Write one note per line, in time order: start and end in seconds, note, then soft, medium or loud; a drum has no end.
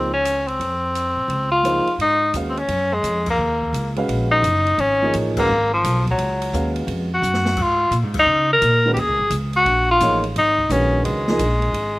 0.00 0.55 C#2 medium
0.00 0.12 C4 medium
0.14 0.49 C#4 loud
0.25 hi-hat pedal medium
0.25 ride medium
0.48 1.51 C4 medium
0.48 ride soft
0.60 1.13 F2 medium
0.60 ride medium
0.95 hi-hat pedal soft
0.95 ride medium
1.16 1.27 A1 medium
1.28 1.82 C#2 medium
1.28 ride medium
1.52 1.96 F4 medium
1.63 1.84 F3 medium
1.63 1.85 A#3 medium
1.63 1.85 D#4 medium
1.63 1.85 G#4 medium
1.63 1.85 C5 medium
1.63 hi-hat pedal medium
1.63 ride medium
1.86 muted upright bass stroke soft
1.86 ride soft
1.98 2.33 G#2 medium
1.98 2.33 D#4 loud
1.98 ride medium
2.34 2.68 D#2 medium
2.34 2.55 G#3 medium
2.34 2.55 C#4 medium
2.34 2.55 F#4 medium
2.34 2.55 B4 soft
2.34 2.56 F5 medium
2.34 hi-hat pedal medium
2.34 ride medium
2.50 2.61 C4 medium
2.57 2.95 C#4 medium
2.57 ride soft
2.68 3.02 F#2 medium
2.68 ride medium
2.94 3.28 G#3 medium
3.03 3.37 F2 medium
3.03 hi-hat pedal medium
3.03 ride medium
3.26 kick medium
3.26 crash medium
3.30 3.94 A#3 medium
3.38 3.72 D#2 medium
3.62 kick medium
3.73 4.07 C#2 medium
3.73 hi-hat pedal medium
3.73 ride medium
3.96 4.41 G#3 medium
3.96 4.41 C#4 medium
3.96 4.42 F#4 medium
3.96 4.42 B4 medium
3.96 4.42 F5 medium
3.96 ride soft
4.08 4.41 A#1 medium
4.08 ride medium
4.31 4.81 D#4 loud
4.42 4.76 F#1 medium
4.42 hi-hat pedal medium
4.42 ride medium
4.67 ride soft
4.78 5.12 G#1 medium
4.78 5.14 C#4 loud
4.78 ride medium
5.02 5.34 F3 medium
5.02 5.34 A#3 medium
5.02 5.35 D#4 medium
5.02 5.35 G#4 medium
5.02 5.35 C#5 medium
5.13 5.48 A1 medium
5.13 hi-hat pedal medium
5.13 ride medium
5.37 5.48 G#3 medium
5.37 5.70 A#3 loud
5.37 5.48 C#4 medium
5.37 5.48 F#4 medium
5.37 5.48 B4 medium
5.37 5.48 F5 medium
5.37 kick medium
5.37 crash medium
5.49 5.82 G#1 medium
5.74 6.05 F3 medium
5.84 6.17 B1 loud
5.84 hi-hat pedal medium
5.84 ride medium
6.07 kick medium
6.07 ride soft
6.11 6.74 F#3 medium
6.18 6.52 C#2 medium
6.18 ride medium
6.42 ride medium
6.53 6.87 D#2 medium
6.53 7.06 G#3 medium
6.53 7.06 C#4 medium
6.53 7.06 F#4 medium
6.53 7.06 B4 soft
6.53 7.07 F5 medium
6.53 hi-hat pedal medium
6.76 ride soft
6.87 7.21 F2 medium
6.87 ride medium
7.14 7.64 F#4 loud
7.22 7.56 F#2 medium
7.22 hi-hat pedal medium
7.34 snare medium
7.45 snare medium
7.57 7.90 G#2 medium
7.57 kick medium
7.57 crash medium
7.62 7.95 F4 loud
7.91 8.03 A#2 medium
7.91 hi-hat pedal medium
7.91 ride medium
8.03 8.15 G#2 medium
8.14 8.25 F#2 medium
8.14 kick medium
8.14 crash medium
8.19 8.50 D#4 loud
8.26 8.60 C#3 medium
8.53 8.91 A#4 loud
8.62 8.95 A#2 medium
8.62 hi-hat pedal medium
8.62 ride medium
8.85 8.96 D#3 medium
8.85 8.96 G#3 medium
8.85 8.96 C#4 medium
8.85 8.97 F#4 medium
8.85 8.97 B4 medium
8.94 9.08 D#2 medium
8.94 9.01 G4 medium
8.94 ride medium
9.00 9.33 G#4 loud
9.08 9.18 C#2 medium
9.19 9.30 G#1 medium
9.30 9.65 C#2 medium
9.30 hi-hat pedal medium
9.30 ride medium
9.53 9.88 F#4 loud
9.53 ride soft
9.65 10.00 A#1 medium
9.65 ride medium
9.91 10.23 F4 loud
10.00 10.34 A1 medium
10.00 10.21 F3 medium
10.00 10.21 A#3 medium
10.00 10.22 D#4 medium
10.00 10.22 G#4 medium
10.00 10.22 C#5 medium
10.00 hi-hat pedal medium
10.00 ride medium
10.24 ride soft
10.36 10.69 G#1 medium
10.36 10.73 D#4 loud
10.36 ride medium
10.58 kick medium
10.69 11.04 A#1 medium
10.69 11.23 D#3 medium
10.69 11.23 G#3 medium
10.69 11.23 C#4 medium
10.69 11.04 C#4 medium
10.69 11.24 F#4 medium
10.69 11.24 B4 medium
10.69 hi-hat pedal medium
10.69 ride medium
11.04 11.39 C#2 medium
11.04 11.99 G#3 medium
11.04 ride medium
11.27 11.39 F3 medium
11.27 11.40 A#3 medium
11.27 11.40 D#4 medium
11.27 11.40 G#4 medium
11.27 11.40 D#5 medium
11.27 snare medium
11.39 11.73 A#1 loud
11.39 hi-hat pedal medium
11.39 ride medium
11.62 ride soft
11.73 11.99 G#1 medium
11.73 ride medium